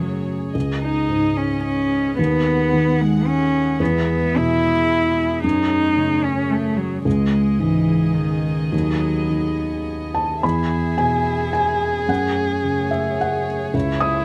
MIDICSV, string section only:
0, 0, Header, 1, 2, 480
1, 0, Start_track
1, 0, Key_signature, 4, "major"
1, 0, Tempo, 542495
1, 483, Time_signature, 3, 2, 24, 8
1, 6722, Tempo, 566572
1, 9122, Tempo, 550964
1, 12448, End_track
2, 0, Start_track
2, 0, Title_t, "String section"
2, 0, Program_c, 0, 48
2, 0, Note_on_c, 0, 57, 37
2, 0, Note_on_c, 0, 68, 36
2, 0, Note_on_c, 0, 73, 39
2, 472, Note_on_c, 0, 56, 40
2, 475, Note_on_c, 0, 75, 40
2, 482, Note_off_c, 0, 73, 0
2, 485, Note_off_c, 0, 57, 0
2, 1893, Note_off_c, 0, 68, 0
2, 1927, Note_off_c, 0, 75, 0
2, 1929, Note_on_c, 0, 68, 42
2, 1932, Note_on_c, 0, 78, 45
2, 3360, Note_on_c, 0, 76, 42
2, 3362, Note_off_c, 0, 78, 0
2, 4804, Note_off_c, 0, 56, 0
2, 4809, Note_off_c, 0, 76, 0
2, 4812, Note_on_c, 0, 57, 50
2, 4817, Note_on_c, 0, 73, 47
2, 6205, Note_off_c, 0, 68, 0
2, 6234, Note_on_c, 0, 68, 47
2, 6236, Note_on_c, 0, 56, 45
2, 6238, Note_on_c, 0, 75, 43
2, 6243, Note_off_c, 0, 57, 0
2, 6246, Note_off_c, 0, 73, 0
2, 7674, Note_off_c, 0, 56, 0
2, 7684, Note_on_c, 0, 59, 37
2, 9087, Note_off_c, 0, 68, 0
2, 9109, Note_off_c, 0, 59, 0
2, 9117, Note_on_c, 0, 68, 41
2, 9119, Note_on_c, 0, 59, 42
2, 9123, Note_off_c, 0, 75, 0
2, 9124, Note_on_c, 0, 76, 39
2, 10531, Note_off_c, 0, 59, 0
2, 10534, Note_off_c, 0, 76, 0
2, 10576, Note_on_c, 0, 57, 39
2, 10577, Note_on_c, 0, 73, 43
2, 11966, Note_off_c, 0, 68, 0
2, 11988, Note_on_c, 0, 64, 46
2, 11990, Note_on_c, 0, 56, 49
2, 12008, Note_off_c, 0, 57, 0
2, 12448, Note_off_c, 0, 56, 0
2, 12448, Note_off_c, 0, 64, 0
2, 12448, Note_off_c, 0, 73, 0
2, 12448, End_track
0, 0, End_of_file